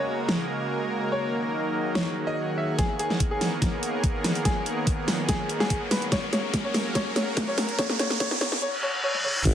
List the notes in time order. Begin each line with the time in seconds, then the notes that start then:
Already playing: C#3 G#3 A#3 F#4 A#4 C#5 D#5 G#5 A#5
0.29 snare
1.12 D#3 F#3 D#4 C#5
1.43 G#4
1.87 C#5 F#5
1.95 C#5, snare
2.27 D#5
2.58 E5
2.79 D#3 A#3 B3 G#4 A#4, kick, snare, closed hi-hat, riser
2.99 G#4, closed hi-hat
3.10 snare
3.20 kick, closed hi-hat
3.31 G#4
3.41 snare, open hi-hat
3.62 kick, snare, closed hi-hat
3.83 closed hi-hat
4.04 kick, closed hi-hat
4.24 snare, open hi-hat
4.35 closed hi-hat
4.45 G#4, kick, snare, closed hi-hat
4.66 closed hi-hat
4.87 kick, closed hi-hat
5.08 snare, open hi-hat
5.29 G#4, kick, snare, closed hi-hat
5.49 closed hi-hat
5.60 G#4, snare
5.70 kick, closed hi-hat
5.91 B4, snare, open hi-hat
6.02 closed hi-hat
6.12 F#3 A#3 C#4 A#4 C#5, kick, snare, closed hi-hat
6.33 C#5, snare, closed hi-hat
6.54 kick, snare, closed hi-hat
6.64 C#5
6.74 snare, open hi-hat
6.95 C#5, kick, snare, closed hi-hat
7.04 A#5
7.16 C#5, snare, closed hi-hat
7.37 kick, snare, closed hi-hat
7.48 C#5
7.58 snare, open hi-hat
7.69 closed hi-hat
7.79 C#5, kick, snare, closed hi-hat
7.89 snare
7.99 C#5, snare, closed hi-hat
8.10 snare
8.20 C#5, kick, snare, closed hi-hat
8.31 snare
8.41 C#5, snare, open hi-hat
8.52 snare
8.62 C#5, reverse cymbal
8.83 C#5
9.04 C#5
9.15 high tom
9.24 C#5, mid tom
9.35 mid tom
9.45 G#1, kick, closed hi-hat, crash, impact